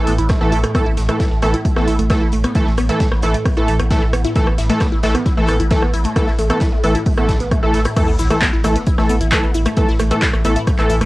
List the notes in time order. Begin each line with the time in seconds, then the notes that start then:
Already playing: A2 E3 A3 A4
0.07 A1 B3, closed hi-hat, open hi-hat
0.18 A1 E4, closed hi-hat
0.29 A3, kick, cross-stick, snare, closed hi-hat
0.41 A1 E3 A3 B3 A4
0.52 A1 E4, closed hi-hat, open hi-hat
0.64 A3, cross-stick, closed hi-hat
0.75 E3 A3 B3 A4, kick, cross-stick, closed hi-hat
0.86 A1 E4
0.97 A1 A3, snare, closed hi-hat, open hi-hat
1.09 E3 A3 B3 A4, cross-stick, closed hi-hat
1.20 E4, kick, snare, closed hi-hat
1.31 A1 A3
1.42 A1 E3 A3 B3 A4, cross-stick, snare, closed hi-hat, open hi-hat
1.54 E4, closed hi-hat
1.65 A3, kick, closed hi-hat
1.76 A1 E3 A3 B3 A4, cross-stick, snare
1.88 A1 E4, closed hi-hat, open hi-hat
1.99 A1 A3, closed hi-hat
2.10 E3 A3 B3 A4, kick, cross-stick, snare, closed hi-hat
2.21 A1 E4
2.32 A1 A3, closed hi-hat, open hi-hat
2.44 B3, cross-stick, closed hi-hat
2.55 E3 A3 E4 A4, kick, closed hi-hat
2.67 A1 A3, snare
2.77 A1 B3, cross-stick, closed hi-hat, open hi-hat
2.89 E3 A3 E4 A4, closed hi-hat
3.00 A3, kick, snare, closed hi-hat
3.12 A1 B3, cross-stick
3.22 A1 E3 A3 E4 A4, closed hi-hat, open hi-hat
3.34 A3, closed hi-hat
3.45 B3, kick, cross-stick, closed hi-hat, open hi-hat
3.57 A1 E3 A3 E4 A4, closed hi-hat
3.68 A1 A3, closed hi-hat, open hi-hat
3.79 A1 B3, cross-stick, closed hi-hat
3.90 E3 A3 E4 A4, kick, snare, closed hi-hat
4.02 A1 A3
4.13 A1 B3, cross-stick, closed hi-hat, open hi-hat
4.24 E4, closed hi-hat
4.35 E3 A3 A4, kick, closed hi-hat
4.47 A1 B3, cross-stick
4.58 A1 E4, snare, closed hi-hat, open hi-hat
4.70 E3 A3 A4, closed hi-hat
4.80 B3, kick, cross-stick, snare, closed hi-hat
4.92 A1 E4
5.03 A1 E3 A3 A4, snare, closed hi-hat, open hi-hat
5.15 B3, cross-stick, closed hi-hat
5.26 E4, kick, snare, closed hi-hat
5.37 A1 E3 A3 A4
5.47 A1 B3, cross-stick, closed hi-hat, open hi-hat
5.60 A1 E4, closed hi-hat
5.71 E3 A3 A4, kick, snare, closed hi-hat
5.82 A1 B3, cross-stick
5.93 A1 E4, closed hi-hat, open hi-hat
6.04 A3, closed hi-hat
6.16 E3 A3 B3 A4, kick, cross-stick, closed hi-hat
6.27 A1 E4, snare
6.39 A1 A3, closed hi-hat, open hi-hat
6.50 E3 A3 B3 A4, cross-stick, closed hi-hat
6.60 E4, kick, snare, closed hi-hat
6.73 A1 A3
6.84 A1 E3 A3 B3 A4, closed hi-hat, open hi-hat
6.95 E4, closed hi-hat
7.06 A3, kick, closed hi-hat, open hi-hat
7.17 A1 E3 A3 B3 A4, cross-stick, closed hi-hat
7.29 A1 A3, kick, snare, closed hi-hat, open hi-hat
7.40 A1 B3, closed hi-hat
7.51 A3, kick, cross-stick, closed hi-hat
7.63 A1 E3 A3 A4
7.74 A1 A4, snare, closed hi-hat, open hi-hat
7.85 E4, cross-stick, closed hi-hat
7.97 A2 E3 A3 A4, kick, cross-stick, closed hi-hat, crash, sub drop, shaker
8.08 A1 B3, shaker
8.19 A1 E4, snare, closed hi-hat, open hi-hat, shaker
8.30 E3 A3 A4, cross-stick, closed hi-hat, shaker
8.42 B3, kick, snare, clap, closed hi-hat, shaker
8.53 A1 E4, shaker
8.64 A1 E3 A3 A4, cross-stick, snare, closed hi-hat, open hi-hat, shaker
8.76 B3, closed hi-hat, shaker
8.86 E4, kick, closed hi-hat, shaker
8.98 A1 E3 A3 A4, cross-stick, snare, shaker
9.09 A1 B3, closed hi-hat, open hi-hat, shaker
9.21 A1 E4, closed hi-hat, shaker
9.32 E3 A3 A4, kick, cross-stick, snare, clap, closed hi-hat, shaker
9.43 A1 B3, shaker
9.54 A1 E4, closed hi-hat, open hi-hat, shaker
9.65 A3, cross-stick, closed hi-hat, shaker
9.77 E3 A3 B3 A4, kick, closed hi-hat, shaker
9.88 A1 E4, snare, shaker
9.99 A1 A3, cross-stick, closed hi-hat, open hi-hat, shaker
10.11 E3 A3 B3 A4, closed hi-hat, shaker
10.22 E4, kick, snare, clap, closed hi-hat, shaker
10.33 A1 A3, cross-stick, shaker
10.45 A1 E3 A3 B3 A4, closed hi-hat, open hi-hat, shaker
10.56 E4, closed hi-hat, shaker
10.67 A3, kick, cross-stick, closed hi-hat, open hi-hat, shaker
10.79 A1 E3 A3 B3 A4, clap, closed hi-hat, shaker
10.90 A1 E4, closed hi-hat, open hi-hat, shaker
11.01 A1 A3, cross-stick, closed hi-hat, shaker